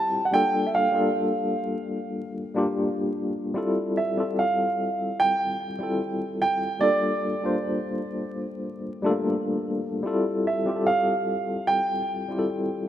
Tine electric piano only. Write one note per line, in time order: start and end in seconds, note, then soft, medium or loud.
0.00 0.31 G3 medium
0.00 0.33 C4 medium
0.00 0.32 E4 medium
0.00 0.33 F4 medium
0.00 0.10 G4 medium
0.31 0.78 G3 medium
0.31 0.78 A#3 medium
0.31 0.78 D4 medium
0.31 0.79 F4 medium
0.35 0.80 A4 medium
0.92 2.16 G3 medium
0.92 2.16 A#3 medium
0.92 2.17 D4 medium
0.92 2.17 F4 medium
0.96 2.18 A4 medium
2.54 3.32 G3 medium
2.54 3.32 A#3 medium
2.54 3.32 D4 medium
2.54 3.33 F4 medium
2.54 3.34 G4 medium
3.54 4.01 G3 medium
3.54 4.02 C4 medium
3.54 4.02 E4 medium
3.54 4.02 F4 medium
3.54 4.03 A4 loud
4.17 5.41 G3 medium
4.17 5.41 C4 medium
4.17 5.42 F4 medium
4.17 5.41 G4 medium
4.17 5.42 A4 medium
5.79 6.56 G3 medium
5.79 6.57 C4 medium
5.79 6.57 E4 medium
5.79 6.58 F4 medium
5.83 6.58 A4 medium
6.80 7.26 G3 medium
6.80 7.27 A#3 medium
6.80 7.27 D4 medium
6.80 7.28 F4 medium
6.80 7.28 A4 medium
7.42 8.65 G3 medium
7.42 8.66 A#3 medium
7.42 8.66 D4 medium
7.42 8.67 F4 medium
7.42 8.67 C5 medium
9.02 9.80 G3 medium
9.02 9.09 A3 medium
9.02 9.81 D4 medium
9.02 9.82 F4 medium
9.06 9.84 A#3 medium
9.06 9.82 A4 medium
10.03 10.50 G3 loud
10.03 10.50 C4 medium
10.03 10.51 E4 medium
10.03 10.52 F4 medium
10.07 10.52 A4 loud
10.65 11.89 G3 medium
10.65 11.90 C4 medium
10.65 11.91 F4 medium
10.65 10.69 G4 medium
10.65 10.74 G4 medium
10.76 11.94 A4 medium
12.28 12.88 G3 medium
12.28 12.88 C4 medium
12.28 12.88 E4 medium
12.28 12.88 F4 medium
12.28 12.36 G4 medium
12.39 12.88 A4 medium